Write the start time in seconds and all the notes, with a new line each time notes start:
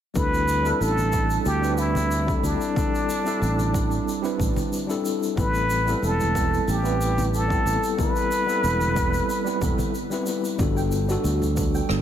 0.14 D2 G3 C4 D4 E4 A4 B4, kick, high conga, shaker
0.34 shaker
0.48 shaker
0.63 G3 C4 D4 E4 A4, shaker
0.81 A1 A4, shaker
0.98 high conga, shaker
1.12 G3 C4 D4 E4 A4, kick, shaker
1.30 shaker
1.46 D2 G4, shaker
1.61 G3 C4 D4 E4 B4, shaker
1.78 E4, shaker
1.95 high conga, shaker
2.11 shaker
2.26 G3 C4 D4 E4 A4, kick, shaker
2.43 D2 D4, shaker
2.61 shaker
2.75 G3 C4 D4 E4 A4, kick, high conga, shaker
2.95 shaker
3.10 shaker
3.24 G3 C4 D4 E4 A4, shaker
3.42 A1, shaker
3.59 high conga, shaker
3.73 G3 C4 D4 E4 A4, kick, shaker
3.91 shaker
4.08 shaker
4.22 G3 C4 D4 E4 B4, shaker
4.39 A1, kick, shaker
4.56 high conga, shaker
4.73 shaker
4.87 G3 C4 D4 E4 A4, shaker
5.06 shaker
5.23 shaker
5.36 A1 G3 B3 C4 E4 A4 B4, kick, high conga, shaker
5.54 shaker
5.70 shaker
5.85 G3 B3 C4 E4 A4, shaker
6.02 E1 A4, shaker
6.20 high conga, shaker
6.33 G3 B3 C4 E4 A4, kick, shaker
6.54 shaker
6.68 A1 G4, shaker
6.82 G3 B3 C4 E4 B4, shaker
7.01 shaker
7.18 high conga, shaker
7.34 A4, shaker
7.48 G3 B3 C4 E4 A4, kick, shaker
7.65 A1, shaker
7.83 shaker
7.97 G3 B3 C4 E4 A4 B4, kick, high conga, shaker
8.16 shaker
8.32 shaker
8.46 G3 B3 C4 E4 A4, shaker
8.64 E1, shaker
8.81 high conga, shaker
8.95 G3 B3 C4 E4 A4, kick, shaker
9.13 shaker
9.30 shaker
9.44 G3 B3 C4 E4 B4, shaker
9.60 E1 G3 B3 C4 E4 A4, kick, shaker
9.79 high conga, shaker
9.95 shaker
10.10 G3 B3 C4 E4 B4, shaker
10.26 G3 B3 C4 E4 B4, shaker
10.45 shaker
10.58 G1 G3 B3 D4 F#4 A4, kick, high conga, shaker
10.77 G5, shaker
10.92 shaker
11.08 G3 B3 D4 F#4 A4, shaker
11.24 D2, shaker
11.42 high conga, shaker
11.56 G3 B3 D4 F#4 A4, kick, shaker
11.74 G5, shaker
11.89 G1, cross-stick, shaker